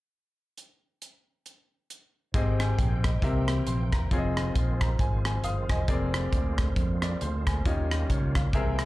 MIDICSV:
0, 0, Header, 1, 6, 480
1, 0, Start_track
1, 0, Key_signature, -4, "major"
1, 0, Tempo, 442152
1, 626, Time_signature, 4, 2, 24, 8
1, 9609, End_track
2, 0, Start_track
2, 0, Title_t, "Grand piano"
2, 0, Program_c, 0, 0
2, 2541, Note_on_c, 0, 60, 74
2, 2546, Note_on_c, 0, 44, 69
2, 2546, Note_on_c, 0, 67, 70
2, 2547, Note_on_c, 0, 68, 67
2, 2552, Note_on_c, 0, 75, 87
2, 2827, Note_on_c, 0, 80, 56
2, 2829, Note_off_c, 0, 75, 0
2, 3017, Note_off_c, 0, 80, 0
2, 3023, Note_on_c, 0, 79, 58
2, 3262, Note_off_c, 0, 44, 0
2, 3290, Note_off_c, 0, 60, 0
2, 3290, Note_off_c, 0, 79, 0
2, 3293, Note_off_c, 0, 67, 0
2, 3293, Note_off_c, 0, 68, 0
2, 3311, Note_on_c, 0, 75, 53
2, 3503, Note_on_c, 0, 60, 81
2, 3509, Note_on_c, 0, 48, 63
2, 3509, Note_on_c, 0, 67, 71
2, 3512, Note_on_c, 0, 70, 72
2, 3515, Note_on_c, 0, 76, 86
2, 3764, Note_off_c, 0, 75, 0
2, 3986, Note_on_c, 0, 84, 60
2, 4097, Note_off_c, 0, 60, 0
2, 4100, Note_off_c, 0, 67, 0
2, 4101, Note_off_c, 0, 70, 0
2, 4103, Note_off_c, 0, 76, 0
2, 4224, Note_off_c, 0, 48, 0
2, 4252, Note_off_c, 0, 84, 0
2, 4271, Note_on_c, 0, 82, 59
2, 4468, Note_on_c, 0, 60, 77
2, 4469, Note_on_c, 0, 65, 71
2, 4473, Note_on_c, 0, 68, 72
2, 4478, Note_on_c, 0, 73, 69
2, 4532, Note_on_c, 0, 75, 85
2, 4539, Note_off_c, 0, 73, 0
2, 4725, Note_off_c, 0, 82, 0
2, 5214, Note_off_c, 0, 60, 0
2, 5214, Note_off_c, 0, 65, 0
2, 5216, Note_off_c, 0, 68, 0
2, 5228, Note_on_c, 0, 82, 59
2, 5246, Note_off_c, 0, 75, 0
2, 5414, Note_off_c, 0, 82, 0
2, 5427, Note_on_c, 0, 80, 70
2, 5687, Note_off_c, 0, 80, 0
2, 5708, Note_on_c, 0, 80, 65
2, 5894, Note_off_c, 0, 80, 0
2, 5908, Note_on_c, 0, 77, 66
2, 5909, Note_on_c, 0, 87, 64
2, 6167, Note_off_c, 0, 77, 0
2, 6173, Note_off_c, 0, 87, 0
2, 6185, Note_on_c, 0, 80, 58
2, 6187, Note_on_c, 0, 75, 61
2, 6373, Note_off_c, 0, 75, 0
2, 6385, Note_on_c, 0, 60, 74
2, 6389, Note_on_c, 0, 68, 67
2, 6391, Note_on_c, 0, 70, 69
2, 6394, Note_on_c, 0, 74, 81
2, 6641, Note_off_c, 0, 80, 0
2, 7132, Note_off_c, 0, 60, 0
2, 7134, Note_off_c, 0, 68, 0
2, 7135, Note_off_c, 0, 70, 0
2, 7137, Note_off_c, 0, 74, 0
2, 7636, Note_on_c, 0, 74, 59
2, 7822, Note_off_c, 0, 74, 0
2, 7837, Note_on_c, 0, 72, 60
2, 8098, Note_off_c, 0, 72, 0
2, 8120, Note_on_c, 0, 80, 52
2, 8313, Note_on_c, 0, 61, 77
2, 8317, Note_on_c, 0, 51, 67
2, 8317, Note_on_c, 0, 65, 71
2, 8320, Note_on_c, 0, 67, 67
2, 8323, Note_on_c, 0, 75, 81
2, 8569, Note_off_c, 0, 80, 0
2, 8795, Note_off_c, 0, 75, 0
2, 8798, Note_on_c, 0, 73, 57
2, 9028, Note_off_c, 0, 51, 0
2, 9056, Note_off_c, 0, 61, 0
2, 9058, Note_off_c, 0, 65, 0
2, 9058, Note_off_c, 0, 73, 0
2, 9060, Note_off_c, 0, 67, 0
2, 9075, Note_on_c, 0, 77, 56
2, 9273, Note_on_c, 0, 60, 78
2, 9273, Note_on_c, 0, 68, 77
2, 9277, Note_on_c, 0, 48, 66
2, 9279, Note_on_c, 0, 70, 75
2, 9281, Note_on_c, 0, 76, 84
2, 9527, Note_off_c, 0, 77, 0
2, 9609, Note_off_c, 0, 48, 0
2, 9609, Note_off_c, 0, 60, 0
2, 9609, Note_off_c, 0, 68, 0
2, 9609, Note_off_c, 0, 70, 0
2, 9609, Note_off_c, 0, 76, 0
2, 9609, End_track
3, 0, Start_track
3, 0, Title_t, "French horn section"
3, 0, Program_c, 1, 60
3, 2544, Note_on_c, 1, 63, 59
3, 2545, Note_on_c, 1, 56, 56
3, 2547, Note_on_c, 1, 72, 65
3, 3496, Note_off_c, 1, 56, 0
3, 3496, Note_off_c, 1, 63, 0
3, 3497, Note_off_c, 1, 72, 0
3, 3509, Note_on_c, 1, 64, 61
3, 3512, Note_on_c, 1, 70, 54
3, 3512, Note_on_c, 1, 72, 69
3, 4458, Note_off_c, 1, 64, 0
3, 4460, Note_off_c, 1, 70, 0
3, 4464, Note_on_c, 1, 63, 63
3, 4464, Note_on_c, 1, 68, 59
3, 4465, Note_on_c, 1, 65, 59
3, 6366, Note_off_c, 1, 63, 0
3, 6367, Note_off_c, 1, 65, 0
3, 6394, Note_on_c, 1, 70, 56
3, 6398, Note_on_c, 1, 62, 64
3, 8266, Note_off_c, 1, 72, 0
3, 8267, Note_off_c, 1, 68, 0
3, 8291, Note_off_c, 1, 70, 0
3, 8294, Note_off_c, 1, 62, 0
3, 8308, Note_on_c, 1, 73, 68
3, 8310, Note_on_c, 1, 67, 55
3, 8311, Note_on_c, 1, 63, 59
3, 8311, Note_on_c, 1, 65, 58
3, 9258, Note_off_c, 1, 73, 0
3, 9259, Note_off_c, 1, 63, 0
3, 9259, Note_off_c, 1, 65, 0
3, 9259, Note_off_c, 1, 67, 0
3, 9271, Note_on_c, 1, 64, 61
3, 9273, Note_on_c, 1, 72, 62
3, 9274, Note_on_c, 1, 70, 57
3, 9277, Note_on_c, 1, 68, 54
3, 9609, Note_off_c, 1, 64, 0
3, 9609, Note_off_c, 1, 68, 0
3, 9609, Note_off_c, 1, 70, 0
3, 9609, Note_off_c, 1, 72, 0
3, 9609, End_track
4, 0, Start_track
4, 0, Title_t, "Tonewheel organ"
4, 0, Program_c, 2, 16
4, 2546, Note_on_c, 2, 60, 57
4, 2548, Note_on_c, 2, 51, 60
4, 2548, Note_on_c, 2, 79, 64
4, 2549, Note_on_c, 2, 56, 56
4, 3498, Note_off_c, 2, 51, 0
4, 3498, Note_off_c, 2, 56, 0
4, 3502, Note_on_c, 2, 52, 55
4, 3502, Note_on_c, 2, 58, 52
4, 4448, Note_off_c, 2, 79, 0
4, 4455, Note_off_c, 2, 52, 0
4, 4455, Note_off_c, 2, 58, 0
4, 4457, Note_on_c, 2, 53, 55
4, 4457, Note_on_c, 2, 65, 70
4, 4459, Note_on_c, 2, 51, 66
4, 4459, Note_on_c, 2, 56, 57
4, 6348, Note_off_c, 2, 60, 0
4, 6362, Note_off_c, 2, 53, 0
4, 6363, Note_off_c, 2, 51, 0
4, 6364, Note_off_c, 2, 56, 0
4, 6388, Note_on_c, 2, 50, 61
4, 6389, Note_on_c, 2, 56, 56
4, 6389, Note_on_c, 2, 60, 61
4, 6391, Note_on_c, 2, 58, 56
4, 8289, Note_off_c, 2, 50, 0
4, 8289, Note_off_c, 2, 56, 0
4, 8289, Note_off_c, 2, 60, 0
4, 8308, Note_on_c, 2, 61, 60
4, 8309, Note_on_c, 2, 51, 64
4, 8309, Note_on_c, 2, 55, 57
4, 9219, Note_off_c, 2, 65, 0
4, 9258, Note_off_c, 2, 51, 0
4, 9258, Note_off_c, 2, 55, 0
4, 9258, Note_off_c, 2, 61, 0
4, 9274, Note_on_c, 2, 52, 57
4, 9274, Note_on_c, 2, 56, 54
4, 9276, Note_on_c, 2, 60, 53
4, 9277, Note_on_c, 2, 79, 64
4, 9609, Note_off_c, 2, 52, 0
4, 9609, Note_off_c, 2, 56, 0
4, 9609, Note_off_c, 2, 58, 0
4, 9609, Note_off_c, 2, 60, 0
4, 9609, Note_off_c, 2, 79, 0
4, 9609, End_track
5, 0, Start_track
5, 0, Title_t, "Fingered electric bass"
5, 0, Program_c, 3, 33
5, 2543, Note_on_c, 3, 32, 85
5, 2953, Note_off_c, 3, 32, 0
5, 3024, Note_on_c, 3, 34, 81
5, 3433, Note_off_c, 3, 34, 0
5, 3499, Note_on_c, 3, 36, 86
5, 3910, Note_off_c, 3, 36, 0
5, 3986, Note_on_c, 3, 34, 80
5, 4224, Note_off_c, 3, 34, 0
5, 4261, Note_on_c, 3, 28, 69
5, 4434, Note_off_c, 3, 28, 0
5, 4465, Note_on_c, 3, 29, 89
5, 4874, Note_off_c, 3, 29, 0
5, 4946, Note_on_c, 3, 34, 74
5, 5354, Note_off_c, 3, 34, 0
5, 5421, Note_on_c, 3, 32, 97
5, 5831, Note_off_c, 3, 32, 0
5, 5907, Note_on_c, 3, 31, 81
5, 6144, Note_off_c, 3, 31, 0
5, 6182, Note_on_c, 3, 28, 86
5, 6354, Note_off_c, 3, 28, 0
5, 6386, Note_on_c, 3, 29, 90
5, 6794, Note_off_c, 3, 29, 0
5, 6869, Note_on_c, 3, 38, 78
5, 7276, Note_off_c, 3, 38, 0
5, 7343, Note_on_c, 3, 41, 84
5, 7752, Note_off_c, 3, 41, 0
5, 7832, Note_on_c, 3, 38, 80
5, 8068, Note_off_c, 3, 38, 0
5, 8110, Note_on_c, 3, 38, 77
5, 8279, Note_off_c, 3, 38, 0
5, 8312, Note_on_c, 3, 39, 92
5, 8718, Note_off_c, 3, 39, 0
5, 8793, Note_on_c, 3, 37, 78
5, 9198, Note_off_c, 3, 37, 0
5, 9263, Note_on_c, 3, 36, 90
5, 9609, Note_off_c, 3, 36, 0
5, 9609, End_track
6, 0, Start_track
6, 0, Title_t, "Drums"
6, 625, Note_on_c, 9, 42, 50
6, 734, Note_off_c, 9, 42, 0
6, 1105, Note_on_c, 9, 42, 52
6, 1213, Note_off_c, 9, 42, 0
6, 1583, Note_on_c, 9, 42, 47
6, 1691, Note_off_c, 9, 42, 0
6, 2065, Note_on_c, 9, 42, 53
6, 2174, Note_off_c, 9, 42, 0
6, 2542, Note_on_c, 9, 36, 94
6, 2542, Note_on_c, 9, 42, 88
6, 2650, Note_off_c, 9, 36, 0
6, 2651, Note_off_c, 9, 42, 0
6, 2821, Note_on_c, 9, 37, 98
6, 2826, Note_on_c, 9, 42, 71
6, 2930, Note_off_c, 9, 37, 0
6, 2935, Note_off_c, 9, 42, 0
6, 3024, Note_on_c, 9, 36, 76
6, 3027, Note_on_c, 9, 42, 86
6, 3132, Note_off_c, 9, 36, 0
6, 3135, Note_off_c, 9, 42, 0
6, 3303, Note_on_c, 9, 37, 104
6, 3304, Note_on_c, 9, 36, 81
6, 3308, Note_on_c, 9, 42, 66
6, 3411, Note_off_c, 9, 37, 0
6, 3413, Note_off_c, 9, 36, 0
6, 3416, Note_off_c, 9, 42, 0
6, 3498, Note_on_c, 9, 36, 87
6, 3510, Note_on_c, 9, 42, 64
6, 3607, Note_off_c, 9, 36, 0
6, 3619, Note_off_c, 9, 42, 0
6, 3777, Note_on_c, 9, 37, 100
6, 3779, Note_on_c, 9, 42, 77
6, 3886, Note_off_c, 9, 37, 0
6, 3888, Note_off_c, 9, 42, 0
6, 3980, Note_on_c, 9, 42, 82
6, 4088, Note_off_c, 9, 42, 0
6, 4261, Note_on_c, 9, 36, 80
6, 4262, Note_on_c, 9, 42, 69
6, 4264, Note_on_c, 9, 37, 93
6, 4370, Note_off_c, 9, 36, 0
6, 4371, Note_off_c, 9, 42, 0
6, 4373, Note_off_c, 9, 37, 0
6, 4464, Note_on_c, 9, 36, 98
6, 4466, Note_on_c, 9, 42, 81
6, 4573, Note_off_c, 9, 36, 0
6, 4574, Note_off_c, 9, 42, 0
6, 4744, Note_on_c, 9, 37, 102
6, 4749, Note_on_c, 9, 42, 71
6, 4853, Note_off_c, 9, 37, 0
6, 4857, Note_off_c, 9, 42, 0
6, 4945, Note_on_c, 9, 36, 82
6, 4945, Note_on_c, 9, 42, 83
6, 5053, Note_off_c, 9, 42, 0
6, 5054, Note_off_c, 9, 36, 0
6, 5221, Note_on_c, 9, 37, 104
6, 5225, Note_on_c, 9, 36, 86
6, 5227, Note_on_c, 9, 42, 64
6, 5330, Note_off_c, 9, 37, 0
6, 5333, Note_off_c, 9, 36, 0
6, 5335, Note_off_c, 9, 42, 0
6, 5419, Note_on_c, 9, 36, 95
6, 5430, Note_on_c, 9, 42, 63
6, 5528, Note_off_c, 9, 36, 0
6, 5538, Note_off_c, 9, 42, 0
6, 5701, Note_on_c, 9, 37, 100
6, 5702, Note_on_c, 9, 42, 78
6, 5809, Note_off_c, 9, 37, 0
6, 5811, Note_off_c, 9, 42, 0
6, 5902, Note_on_c, 9, 42, 82
6, 6010, Note_off_c, 9, 42, 0
6, 6182, Note_on_c, 9, 36, 79
6, 6182, Note_on_c, 9, 42, 72
6, 6184, Note_on_c, 9, 37, 98
6, 6291, Note_off_c, 9, 36, 0
6, 6291, Note_off_c, 9, 42, 0
6, 6292, Note_off_c, 9, 37, 0
6, 6384, Note_on_c, 9, 42, 85
6, 6385, Note_on_c, 9, 36, 101
6, 6493, Note_off_c, 9, 36, 0
6, 6493, Note_off_c, 9, 42, 0
6, 6666, Note_on_c, 9, 37, 110
6, 6671, Note_on_c, 9, 42, 66
6, 6775, Note_off_c, 9, 37, 0
6, 6779, Note_off_c, 9, 42, 0
6, 6867, Note_on_c, 9, 36, 78
6, 6869, Note_on_c, 9, 42, 83
6, 6976, Note_off_c, 9, 36, 0
6, 6977, Note_off_c, 9, 42, 0
6, 7144, Note_on_c, 9, 37, 99
6, 7148, Note_on_c, 9, 36, 85
6, 7149, Note_on_c, 9, 42, 62
6, 7252, Note_off_c, 9, 37, 0
6, 7256, Note_off_c, 9, 36, 0
6, 7257, Note_off_c, 9, 42, 0
6, 7342, Note_on_c, 9, 36, 88
6, 7348, Note_on_c, 9, 42, 67
6, 7451, Note_off_c, 9, 36, 0
6, 7457, Note_off_c, 9, 42, 0
6, 7622, Note_on_c, 9, 37, 103
6, 7624, Note_on_c, 9, 42, 77
6, 7731, Note_off_c, 9, 37, 0
6, 7732, Note_off_c, 9, 42, 0
6, 7828, Note_on_c, 9, 42, 77
6, 7936, Note_off_c, 9, 42, 0
6, 8107, Note_on_c, 9, 36, 81
6, 8108, Note_on_c, 9, 42, 67
6, 8110, Note_on_c, 9, 37, 100
6, 8215, Note_off_c, 9, 36, 0
6, 8216, Note_off_c, 9, 42, 0
6, 8218, Note_off_c, 9, 37, 0
6, 8310, Note_on_c, 9, 36, 98
6, 8313, Note_on_c, 9, 42, 86
6, 8419, Note_off_c, 9, 36, 0
6, 8422, Note_off_c, 9, 42, 0
6, 8592, Note_on_c, 9, 37, 104
6, 8597, Note_on_c, 9, 42, 68
6, 8701, Note_off_c, 9, 37, 0
6, 8705, Note_off_c, 9, 42, 0
6, 8791, Note_on_c, 9, 36, 77
6, 8794, Note_on_c, 9, 42, 78
6, 8900, Note_off_c, 9, 36, 0
6, 8902, Note_off_c, 9, 42, 0
6, 9068, Note_on_c, 9, 37, 93
6, 9070, Note_on_c, 9, 36, 80
6, 9073, Note_on_c, 9, 42, 64
6, 9176, Note_off_c, 9, 37, 0
6, 9178, Note_off_c, 9, 36, 0
6, 9182, Note_off_c, 9, 42, 0
6, 9263, Note_on_c, 9, 36, 93
6, 9273, Note_on_c, 9, 42, 62
6, 9372, Note_off_c, 9, 36, 0
6, 9381, Note_off_c, 9, 42, 0
6, 9540, Note_on_c, 9, 37, 100
6, 9541, Note_on_c, 9, 42, 78
6, 9609, Note_off_c, 9, 37, 0
6, 9609, Note_off_c, 9, 42, 0
6, 9609, End_track
0, 0, End_of_file